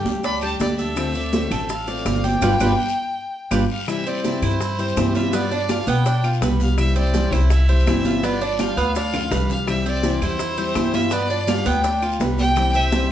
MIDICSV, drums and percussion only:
0, 0, Header, 1, 2, 480
1, 0, Start_track
1, 0, Key_signature, 0, "major"
1, 0, Tempo, 362319
1, 1285, Time_signature, 4, 2, 24, 8
1, 17377, End_track
2, 0, Start_track
2, 0, Title_t, "Drums"
2, 72, Note_on_c, 9, 70, 27
2, 75, Note_on_c, 9, 63, 94
2, 85, Note_on_c, 9, 73, 76
2, 205, Note_off_c, 9, 70, 0
2, 208, Note_off_c, 9, 63, 0
2, 217, Note_off_c, 9, 73, 0
2, 312, Note_on_c, 9, 70, 66
2, 317, Note_on_c, 9, 63, 35
2, 320, Note_on_c, 9, 74, 75
2, 322, Note_on_c, 9, 60, 63
2, 444, Note_off_c, 9, 70, 0
2, 449, Note_off_c, 9, 63, 0
2, 452, Note_off_c, 9, 74, 0
2, 455, Note_off_c, 9, 60, 0
2, 552, Note_on_c, 9, 70, 31
2, 554, Note_on_c, 9, 63, 36
2, 562, Note_on_c, 9, 75, 56
2, 571, Note_on_c, 9, 60, 32
2, 685, Note_off_c, 9, 70, 0
2, 686, Note_off_c, 9, 63, 0
2, 695, Note_off_c, 9, 75, 0
2, 704, Note_off_c, 9, 60, 0
2, 794, Note_on_c, 9, 70, 67
2, 795, Note_on_c, 9, 63, 86
2, 807, Note_on_c, 9, 73, 64
2, 810, Note_on_c, 9, 60, 71
2, 810, Note_on_c, 9, 61, 84
2, 926, Note_off_c, 9, 70, 0
2, 927, Note_off_c, 9, 63, 0
2, 939, Note_off_c, 9, 73, 0
2, 942, Note_off_c, 9, 60, 0
2, 942, Note_off_c, 9, 61, 0
2, 1035, Note_on_c, 9, 70, 30
2, 1048, Note_on_c, 9, 60, 36
2, 1050, Note_on_c, 9, 73, 64
2, 1167, Note_off_c, 9, 70, 0
2, 1181, Note_off_c, 9, 60, 0
2, 1182, Note_off_c, 9, 73, 0
2, 1278, Note_on_c, 9, 63, 34
2, 1278, Note_on_c, 9, 70, 71
2, 1285, Note_on_c, 9, 60, 65
2, 1285, Note_on_c, 9, 75, 64
2, 1292, Note_on_c, 9, 74, 65
2, 1410, Note_off_c, 9, 63, 0
2, 1411, Note_off_c, 9, 70, 0
2, 1417, Note_off_c, 9, 60, 0
2, 1418, Note_off_c, 9, 75, 0
2, 1424, Note_off_c, 9, 74, 0
2, 1515, Note_on_c, 9, 70, 32
2, 1518, Note_on_c, 9, 63, 35
2, 1648, Note_off_c, 9, 70, 0
2, 1651, Note_off_c, 9, 63, 0
2, 1760, Note_on_c, 9, 63, 92
2, 1761, Note_on_c, 9, 70, 74
2, 1761, Note_on_c, 9, 73, 63
2, 1775, Note_on_c, 9, 60, 62
2, 1892, Note_off_c, 9, 63, 0
2, 1894, Note_off_c, 9, 70, 0
2, 1894, Note_off_c, 9, 73, 0
2, 1908, Note_off_c, 9, 60, 0
2, 2000, Note_on_c, 9, 70, 27
2, 2002, Note_on_c, 9, 63, 36
2, 2002, Note_on_c, 9, 64, 85
2, 2003, Note_on_c, 9, 73, 81
2, 2008, Note_on_c, 9, 75, 75
2, 2009, Note_on_c, 9, 60, 37
2, 2132, Note_off_c, 9, 70, 0
2, 2135, Note_off_c, 9, 63, 0
2, 2135, Note_off_c, 9, 64, 0
2, 2135, Note_off_c, 9, 73, 0
2, 2140, Note_off_c, 9, 75, 0
2, 2141, Note_off_c, 9, 60, 0
2, 2240, Note_on_c, 9, 70, 73
2, 2242, Note_on_c, 9, 63, 32
2, 2250, Note_on_c, 9, 74, 70
2, 2251, Note_on_c, 9, 60, 70
2, 2372, Note_off_c, 9, 70, 0
2, 2374, Note_off_c, 9, 63, 0
2, 2383, Note_off_c, 9, 60, 0
2, 2383, Note_off_c, 9, 74, 0
2, 2484, Note_on_c, 9, 70, 29
2, 2487, Note_on_c, 9, 60, 35
2, 2487, Note_on_c, 9, 63, 33
2, 2617, Note_off_c, 9, 70, 0
2, 2619, Note_off_c, 9, 63, 0
2, 2620, Note_off_c, 9, 60, 0
2, 2724, Note_on_c, 9, 70, 66
2, 2726, Note_on_c, 9, 60, 74
2, 2726, Note_on_c, 9, 61, 91
2, 2728, Note_on_c, 9, 63, 91
2, 2728, Note_on_c, 9, 75, 63
2, 2740, Note_on_c, 9, 73, 63
2, 2857, Note_off_c, 9, 70, 0
2, 2859, Note_off_c, 9, 60, 0
2, 2859, Note_off_c, 9, 61, 0
2, 2860, Note_off_c, 9, 63, 0
2, 2861, Note_off_c, 9, 75, 0
2, 2873, Note_off_c, 9, 73, 0
2, 2968, Note_on_c, 9, 63, 88
2, 2969, Note_on_c, 9, 60, 36
2, 2969, Note_on_c, 9, 70, 29
2, 2977, Note_on_c, 9, 73, 69
2, 3101, Note_off_c, 9, 60, 0
2, 3101, Note_off_c, 9, 63, 0
2, 3102, Note_off_c, 9, 70, 0
2, 3110, Note_off_c, 9, 73, 0
2, 3202, Note_on_c, 9, 70, 88
2, 3210, Note_on_c, 9, 63, 99
2, 3212, Note_on_c, 9, 75, 106
2, 3218, Note_on_c, 9, 60, 99
2, 3222, Note_on_c, 9, 74, 85
2, 3335, Note_off_c, 9, 70, 0
2, 3343, Note_off_c, 9, 63, 0
2, 3344, Note_off_c, 9, 75, 0
2, 3350, Note_off_c, 9, 60, 0
2, 3354, Note_off_c, 9, 74, 0
2, 3447, Note_on_c, 9, 70, 99
2, 3449, Note_on_c, 9, 63, 97
2, 3452, Note_on_c, 9, 75, 89
2, 3455, Note_on_c, 9, 74, 110
2, 3461, Note_on_c, 9, 60, 96
2, 3579, Note_off_c, 9, 70, 0
2, 3581, Note_off_c, 9, 63, 0
2, 3584, Note_off_c, 9, 75, 0
2, 3588, Note_off_c, 9, 74, 0
2, 3593, Note_off_c, 9, 60, 0
2, 4654, Note_on_c, 9, 75, 103
2, 4656, Note_on_c, 9, 70, 98
2, 4657, Note_on_c, 9, 63, 107
2, 4660, Note_on_c, 9, 60, 104
2, 4663, Note_on_c, 9, 74, 97
2, 4787, Note_off_c, 9, 75, 0
2, 4789, Note_off_c, 9, 70, 0
2, 4790, Note_off_c, 9, 63, 0
2, 4793, Note_off_c, 9, 60, 0
2, 4796, Note_off_c, 9, 74, 0
2, 5139, Note_on_c, 9, 63, 39
2, 5139, Note_on_c, 9, 75, 68
2, 5141, Note_on_c, 9, 60, 63
2, 5146, Note_on_c, 9, 70, 72
2, 5272, Note_off_c, 9, 63, 0
2, 5272, Note_off_c, 9, 75, 0
2, 5274, Note_off_c, 9, 60, 0
2, 5278, Note_off_c, 9, 70, 0
2, 5379, Note_on_c, 9, 63, 39
2, 5385, Note_on_c, 9, 70, 32
2, 5511, Note_off_c, 9, 63, 0
2, 5517, Note_off_c, 9, 70, 0
2, 5622, Note_on_c, 9, 70, 70
2, 5623, Note_on_c, 9, 63, 91
2, 5624, Note_on_c, 9, 60, 55
2, 5624, Note_on_c, 9, 73, 61
2, 5755, Note_off_c, 9, 70, 0
2, 5756, Note_off_c, 9, 63, 0
2, 5756, Note_off_c, 9, 73, 0
2, 5757, Note_off_c, 9, 60, 0
2, 5862, Note_on_c, 9, 63, 33
2, 5862, Note_on_c, 9, 64, 80
2, 5864, Note_on_c, 9, 73, 80
2, 5865, Note_on_c, 9, 60, 37
2, 5866, Note_on_c, 9, 75, 64
2, 5872, Note_on_c, 9, 70, 31
2, 5994, Note_off_c, 9, 63, 0
2, 5994, Note_off_c, 9, 64, 0
2, 5997, Note_off_c, 9, 60, 0
2, 5997, Note_off_c, 9, 73, 0
2, 5998, Note_off_c, 9, 75, 0
2, 6005, Note_off_c, 9, 70, 0
2, 6102, Note_on_c, 9, 60, 68
2, 6103, Note_on_c, 9, 63, 37
2, 6103, Note_on_c, 9, 74, 74
2, 6110, Note_on_c, 9, 70, 69
2, 6234, Note_off_c, 9, 60, 0
2, 6236, Note_off_c, 9, 63, 0
2, 6236, Note_off_c, 9, 74, 0
2, 6242, Note_off_c, 9, 70, 0
2, 6345, Note_on_c, 9, 70, 31
2, 6346, Note_on_c, 9, 63, 34
2, 6349, Note_on_c, 9, 60, 36
2, 6478, Note_off_c, 9, 70, 0
2, 6479, Note_off_c, 9, 63, 0
2, 6482, Note_off_c, 9, 60, 0
2, 6579, Note_on_c, 9, 73, 66
2, 6583, Note_on_c, 9, 63, 89
2, 6583, Note_on_c, 9, 70, 66
2, 6587, Note_on_c, 9, 75, 64
2, 6589, Note_on_c, 9, 60, 72
2, 6589, Note_on_c, 9, 61, 89
2, 6712, Note_off_c, 9, 73, 0
2, 6715, Note_off_c, 9, 63, 0
2, 6715, Note_off_c, 9, 70, 0
2, 6719, Note_off_c, 9, 75, 0
2, 6722, Note_off_c, 9, 60, 0
2, 6722, Note_off_c, 9, 61, 0
2, 6820, Note_on_c, 9, 73, 70
2, 6822, Note_on_c, 9, 63, 89
2, 6825, Note_on_c, 9, 60, 39
2, 6826, Note_on_c, 9, 70, 34
2, 6953, Note_off_c, 9, 73, 0
2, 6955, Note_off_c, 9, 63, 0
2, 6958, Note_off_c, 9, 60, 0
2, 6959, Note_off_c, 9, 70, 0
2, 7059, Note_on_c, 9, 74, 68
2, 7063, Note_on_c, 9, 70, 74
2, 7064, Note_on_c, 9, 60, 68
2, 7065, Note_on_c, 9, 63, 36
2, 7192, Note_off_c, 9, 74, 0
2, 7195, Note_off_c, 9, 70, 0
2, 7197, Note_off_c, 9, 60, 0
2, 7198, Note_off_c, 9, 63, 0
2, 7305, Note_on_c, 9, 60, 32
2, 7306, Note_on_c, 9, 63, 36
2, 7309, Note_on_c, 9, 70, 32
2, 7438, Note_off_c, 9, 60, 0
2, 7438, Note_off_c, 9, 63, 0
2, 7442, Note_off_c, 9, 70, 0
2, 7534, Note_on_c, 9, 73, 71
2, 7541, Note_on_c, 9, 63, 95
2, 7541, Note_on_c, 9, 70, 79
2, 7542, Note_on_c, 9, 75, 70
2, 7548, Note_on_c, 9, 60, 55
2, 7667, Note_off_c, 9, 73, 0
2, 7673, Note_off_c, 9, 63, 0
2, 7673, Note_off_c, 9, 70, 0
2, 7674, Note_off_c, 9, 75, 0
2, 7681, Note_off_c, 9, 60, 0
2, 7776, Note_on_c, 9, 73, 80
2, 7778, Note_on_c, 9, 63, 92
2, 7781, Note_on_c, 9, 70, 28
2, 7908, Note_off_c, 9, 73, 0
2, 7911, Note_off_c, 9, 63, 0
2, 7914, Note_off_c, 9, 70, 0
2, 8021, Note_on_c, 9, 63, 34
2, 8022, Note_on_c, 9, 74, 73
2, 8025, Note_on_c, 9, 70, 74
2, 8027, Note_on_c, 9, 60, 71
2, 8154, Note_off_c, 9, 63, 0
2, 8154, Note_off_c, 9, 74, 0
2, 8157, Note_off_c, 9, 70, 0
2, 8160, Note_off_c, 9, 60, 0
2, 8258, Note_on_c, 9, 63, 36
2, 8267, Note_on_c, 9, 60, 34
2, 8267, Note_on_c, 9, 70, 30
2, 8268, Note_on_c, 9, 75, 69
2, 8391, Note_off_c, 9, 63, 0
2, 8399, Note_off_c, 9, 60, 0
2, 8400, Note_off_c, 9, 70, 0
2, 8400, Note_off_c, 9, 75, 0
2, 8504, Note_on_c, 9, 63, 84
2, 8506, Note_on_c, 9, 60, 74
2, 8506, Note_on_c, 9, 61, 85
2, 8506, Note_on_c, 9, 73, 71
2, 8511, Note_on_c, 9, 70, 66
2, 8637, Note_off_c, 9, 63, 0
2, 8638, Note_off_c, 9, 60, 0
2, 8638, Note_off_c, 9, 61, 0
2, 8638, Note_off_c, 9, 73, 0
2, 8643, Note_off_c, 9, 70, 0
2, 8740, Note_on_c, 9, 63, 75
2, 8745, Note_on_c, 9, 60, 38
2, 8745, Note_on_c, 9, 70, 33
2, 8745, Note_on_c, 9, 73, 73
2, 8872, Note_off_c, 9, 63, 0
2, 8877, Note_off_c, 9, 70, 0
2, 8877, Note_off_c, 9, 73, 0
2, 8878, Note_off_c, 9, 60, 0
2, 8979, Note_on_c, 9, 60, 62
2, 8980, Note_on_c, 9, 63, 37
2, 8982, Note_on_c, 9, 70, 68
2, 8985, Note_on_c, 9, 75, 64
2, 8987, Note_on_c, 9, 74, 65
2, 9111, Note_off_c, 9, 60, 0
2, 9112, Note_off_c, 9, 63, 0
2, 9115, Note_off_c, 9, 70, 0
2, 9117, Note_off_c, 9, 75, 0
2, 9120, Note_off_c, 9, 74, 0
2, 9216, Note_on_c, 9, 63, 34
2, 9220, Note_on_c, 9, 70, 33
2, 9349, Note_off_c, 9, 63, 0
2, 9353, Note_off_c, 9, 70, 0
2, 9456, Note_on_c, 9, 63, 97
2, 9459, Note_on_c, 9, 70, 80
2, 9467, Note_on_c, 9, 60, 59
2, 9469, Note_on_c, 9, 73, 61
2, 9589, Note_off_c, 9, 63, 0
2, 9591, Note_off_c, 9, 70, 0
2, 9600, Note_off_c, 9, 60, 0
2, 9602, Note_off_c, 9, 73, 0
2, 9698, Note_on_c, 9, 63, 35
2, 9698, Note_on_c, 9, 64, 82
2, 9699, Note_on_c, 9, 70, 28
2, 9704, Note_on_c, 9, 60, 36
2, 9706, Note_on_c, 9, 75, 67
2, 9716, Note_on_c, 9, 73, 78
2, 9831, Note_off_c, 9, 63, 0
2, 9831, Note_off_c, 9, 64, 0
2, 9831, Note_off_c, 9, 70, 0
2, 9837, Note_off_c, 9, 60, 0
2, 9838, Note_off_c, 9, 75, 0
2, 9848, Note_off_c, 9, 73, 0
2, 9938, Note_on_c, 9, 63, 32
2, 9941, Note_on_c, 9, 70, 75
2, 9942, Note_on_c, 9, 60, 69
2, 9957, Note_on_c, 9, 74, 78
2, 10070, Note_off_c, 9, 63, 0
2, 10074, Note_off_c, 9, 60, 0
2, 10074, Note_off_c, 9, 70, 0
2, 10089, Note_off_c, 9, 74, 0
2, 10178, Note_on_c, 9, 63, 36
2, 10186, Note_on_c, 9, 60, 39
2, 10186, Note_on_c, 9, 70, 26
2, 10311, Note_off_c, 9, 63, 0
2, 10319, Note_off_c, 9, 60, 0
2, 10319, Note_off_c, 9, 70, 0
2, 10420, Note_on_c, 9, 63, 90
2, 10421, Note_on_c, 9, 70, 65
2, 10433, Note_on_c, 9, 60, 71
2, 10433, Note_on_c, 9, 61, 91
2, 10433, Note_on_c, 9, 75, 69
2, 10436, Note_on_c, 9, 73, 68
2, 10552, Note_off_c, 9, 63, 0
2, 10554, Note_off_c, 9, 70, 0
2, 10565, Note_off_c, 9, 60, 0
2, 10565, Note_off_c, 9, 61, 0
2, 10565, Note_off_c, 9, 75, 0
2, 10568, Note_off_c, 9, 73, 0
2, 10661, Note_on_c, 9, 63, 92
2, 10665, Note_on_c, 9, 73, 69
2, 10668, Note_on_c, 9, 70, 31
2, 10673, Note_on_c, 9, 60, 38
2, 10794, Note_off_c, 9, 63, 0
2, 10798, Note_off_c, 9, 73, 0
2, 10801, Note_off_c, 9, 70, 0
2, 10805, Note_off_c, 9, 60, 0
2, 10907, Note_on_c, 9, 74, 74
2, 10911, Note_on_c, 9, 60, 70
2, 10911, Note_on_c, 9, 70, 70
2, 11039, Note_off_c, 9, 74, 0
2, 11043, Note_off_c, 9, 70, 0
2, 11044, Note_off_c, 9, 60, 0
2, 11142, Note_on_c, 9, 63, 38
2, 11148, Note_on_c, 9, 70, 30
2, 11157, Note_on_c, 9, 60, 32
2, 11274, Note_off_c, 9, 63, 0
2, 11281, Note_off_c, 9, 70, 0
2, 11289, Note_off_c, 9, 60, 0
2, 11380, Note_on_c, 9, 63, 93
2, 11383, Note_on_c, 9, 70, 79
2, 11388, Note_on_c, 9, 60, 59
2, 11388, Note_on_c, 9, 73, 66
2, 11390, Note_on_c, 9, 75, 65
2, 11513, Note_off_c, 9, 63, 0
2, 11515, Note_off_c, 9, 70, 0
2, 11520, Note_off_c, 9, 60, 0
2, 11521, Note_off_c, 9, 73, 0
2, 11522, Note_off_c, 9, 75, 0
2, 11627, Note_on_c, 9, 70, 28
2, 11629, Note_on_c, 9, 73, 72
2, 11760, Note_off_c, 9, 70, 0
2, 11761, Note_off_c, 9, 73, 0
2, 11862, Note_on_c, 9, 70, 73
2, 11866, Note_on_c, 9, 74, 75
2, 11876, Note_on_c, 9, 60, 67
2, 11994, Note_off_c, 9, 70, 0
2, 11999, Note_off_c, 9, 74, 0
2, 12009, Note_off_c, 9, 60, 0
2, 12102, Note_on_c, 9, 64, 98
2, 12106, Note_on_c, 9, 75, 67
2, 12108, Note_on_c, 9, 70, 27
2, 12110, Note_on_c, 9, 60, 32
2, 12235, Note_off_c, 9, 64, 0
2, 12238, Note_off_c, 9, 75, 0
2, 12240, Note_off_c, 9, 70, 0
2, 12242, Note_off_c, 9, 60, 0
2, 12337, Note_on_c, 9, 64, 102
2, 12341, Note_on_c, 9, 60, 76
2, 12341, Note_on_c, 9, 61, 92
2, 12341, Note_on_c, 9, 73, 75
2, 12342, Note_on_c, 9, 70, 75
2, 12469, Note_off_c, 9, 64, 0
2, 12474, Note_off_c, 9, 60, 0
2, 12474, Note_off_c, 9, 61, 0
2, 12474, Note_off_c, 9, 73, 0
2, 12475, Note_off_c, 9, 70, 0
2, 12577, Note_on_c, 9, 73, 72
2, 12578, Note_on_c, 9, 64, 87
2, 12580, Note_on_c, 9, 60, 34
2, 12586, Note_on_c, 9, 70, 35
2, 12710, Note_off_c, 9, 73, 0
2, 12711, Note_off_c, 9, 64, 0
2, 12713, Note_off_c, 9, 60, 0
2, 12718, Note_off_c, 9, 70, 0
2, 12818, Note_on_c, 9, 60, 70
2, 12820, Note_on_c, 9, 63, 37
2, 12822, Note_on_c, 9, 70, 71
2, 12822, Note_on_c, 9, 75, 75
2, 12823, Note_on_c, 9, 74, 67
2, 12950, Note_off_c, 9, 60, 0
2, 12953, Note_off_c, 9, 63, 0
2, 12954, Note_off_c, 9, 70, 0
2, 12955, Note_off_c, 9, 74, 0
2, 12955, Note_off_c, 9, 75, 0
2, 13060, Note_on_c, 9, 63, 35
2, 13061, Note_on_c, 9, 70, 31
2, 13193, Note_off_c, 9, 63, 0
2, 13193, Note_off_c, 9, 70, 0
2, 13292, Note_on_c, 9, 60, 59
2, 13292, Note_on_c, 9, 70, 77
2, 13294, Note_on_c, 9, 63, 95
2, 13305, Note_on_c, 9, 73, 67
2, 13425, Note_off_c, 9, 60, 0
2, 13425, Note_off_c, 9, 70, 0
2, 13427, Note_off_c, 9, 63, 0
2, 13438, Note_off_c, 9, 73, 0
2, 13534, Note_on_c, 9, 60, 36
2, 13535, Note_on_c, 9, 70, 29
2, 13537, Note_on_c, 9, 63, 35
2, 13537, Note_on_c, 9, 64, 82
2, 13537, Note_on_c, 9, 75, 70
2, 13541, Note_on_c, 9, 73, 72
2, 13666, Note_off_c, 9, 60, 0
2, 13667, Note_off_c, 9, 70, 0
2, 13669, Note_off_c, 9, 63, 0
2, 13669, Note_off_c, 9, 64, 0
2, 13670, Note_off_c, 9, 75, 0
2, 13673, Note_off_c, 9, 73, 0
2, 13769, Note_on_c, 9, 60, 67
2, 13773, Note_on_c, 9, 70, 74
2, 13774, Note_on_c, 9, 63, 32
2, 13774, Note_on_c, 9, 64, 68
2, 13777, Note_on_c, 9, 74, 76
2, 13902, Note_off_c, 9, 60, 0
2, 13906, Note_off_c, 9, 63, 0
2, 13906, Note_off_c, 9, 64, 0
2, 13906, Note_off_c, 9, 70, 0
2, 13910, Note_off_c, 9, 74, 0
2, 14011, Note_on_c, 9, 70, 30
2, 14013, Note_on_c, 9, 60, 34
2, 14013, Note_on_c, 9, 63, 34
2, 14144, Note_off_c, 9, 70, 0
2, 14145, Note_off_c, 9, 60, 0
2, 14146, Note_off_c, 9, 63, 0
2, 14247, Note_on_c, 9, 60, 73
2, 14247, Note_on_c, 9, 61, 91
2, 14249, Note_on_c, 9, 70, 68
2, 14250, Note_on_c, 9, 63, 90
2, 14252, Note_on_c, 9, 75, 66
2, 14260, Note_on_c, 9, 73, 73
2, 14379, Note_off_c, 9, 60, 0
2, 14379, Note_off_c, 9, 61, 0
2, 14382, Note_off_c, 9, 70, 0
2, 14383, Note_off_c, 9, 63, 0
2, 14385, Note_off_c, 9, 75, 0
2, 14393, Note_off_c, 9, 73, 0
2, 14482, Note_on_c, 9, 60, 36
2, 14491, Note_on_c, 9, 70, 35
2, 14493, Note_on_c, 9, 63, 97
2, 14495, Note_on_c, 9, 73, 68
2, 14614, Note_off_c, 9, 60, 0
2, 14623, Note_off_c, 9, 70, 0
2, 14626, Note_off_c, 9, 63, 0
2, 14627, Note_off_c, 9, 73, 0
2, 14720, Note_on_c, 9, 60, 73
2, 14722, Note_on_c, 9, 70, 76
2, 14736, Note_on_c, 9, 74, 71
2, 14852, Note_off_c, 9, 60, 0
2, 14855, Note_off_c, 9, 70, 0
2, 14869, Note_off_c, 9, 74, 0
2, 14969, Note_on_c, 9, 60, 32
2, 14970, Note_on_c, 9, 70, 32
2, 15101, Note_off_c, 9, 60, 0
2, 15102, Note_off_c, 9, 70, 0
2, 15203, Note_on_c, 9, 70, 82
2, 15211, Note_on_c, 9, 60, 60
2, 15211, Note_on_c, 9, 73, 65
2, 15211, Note_on_c, 9, 75, 72
2, 15212, Note_on_c, 9, 63, 99
2, 15335, Note_off_c, 9, 70, 0
2, 15343, Note_off_c, 9, 60, 0
2, 15343, Note_off_c, 9, 75, 0
2, 15344, Note_off_c, 9, 63, 0
2, 15344, Note_off_c, 9, 73, 0
2, 15443, Note_on_c, 9, 70, 29
2, 15445, Note_on_c, 9, 63, 102
2, 15452, Note_on_c, 9, 73, 82
2, 15575, Note_off_c, 9, 70, 0
2, 15578, Note_off_c, 9, 63, 0
2, 15585, Note_off_c, 9, 73, 0
2, 15684, Note_on_c, 9, 70, 68
2, 15687, Note_on_c, 9, 63, 31
2, 15688, Note_on_c, 9, 60, 73
2, 15688, Note_on_c, 9, 74, 78
2, 15817, Note_off_c, 9, 70, 0
2, 15819, Note_off_c, 9, 63, 0
2, 15820, Note_off_c, 9, 74, 0
2, 15821, Note_off_c, 9, 60, 0
2, 15925, Note_on_c, 9, 63, 37
2, 15928, Note_on_c, 9, 70, 29
2, 15930, Note_on_c, 9, 75, 66
2, 15932, Note_on_c, 9, 60, 34
2, 16057, Note_off_c, 9, 63, 0
2, 16061, Note_off_c, 9, 70, 0
2, 16063, Note_off_c, 9, 75, 0
2, 16064, Note_off_c, 9, 60, 0
2, 16163, Note_on_c, 9, 70, 72
2, 16164, Note_on_c, 9, 63, 87
2, 16170, Note_on_c, 9, 73, 64
2, 16175, Note_on_c, 9, 60, 68
2, 16175, Note_on_c, 9, 61, 87
2, 16295, Note_off_c, 9, 70, 0
2, 16297, Note_off_c, 9, 63, 0
2, 16302, Note_off_c, 9, 73, 0
2, 16307, Note_off_c, 9, 60, 0
2, 16307, Note_off_c, 9, 61, 0
2, 16404, Note_on_c, 9, 63, 81
2, 16404, Note_on_c, 9, 70, 30
2, 16410, Note_on_c, 9, 73, 73
2, 16412, Note_on_c, 9, 60, 37
2, 16537, Note_off_c, 9, 63, 0
2, 16537, Note_off_c, 9, 70, 0
2, 16542, Note_off_c, 9, 73, 0
2, 16544, Note_off_c, 9, 60, 0
2, 16640, Note_on_c, 9, 70, 71
2, 16641, Note_on_c, 9, 75, 66
2, 16645, Note_on_c, 9, 74, 71
2, 16653, Note_on_c, 9, 60, 70
2, 16772, Note_off_c, 9, 70, 0
2, 16773, Note_off_c, 9, 75, 0
2, 16777, Note_off_c, 9, 74, 0
2, 16785, Note_off_c, 9, 60, 0
2, 16874, Note_on_c, 9, 70, 32
2, 17006, Note_off_c, 9, 70, 0
2, 17118, Note_on_c, 9, 70, 75
2, 17120, Note_on_c, 9, 63, 102
2, 17123, Note_on_c, 9, 60, 58
2, 17125, Note_on_c, 9, 73, 69
2, 17250, Note_off_c, 9, 70, 0
2, 17252, Note_off_c, 9, 63, 0
2, 17256, Note_off_c, 9, 60, 0
2, 17257, Note_off_c, 9, 73, 0
2, 17377, End_track
0, 0, End_of_file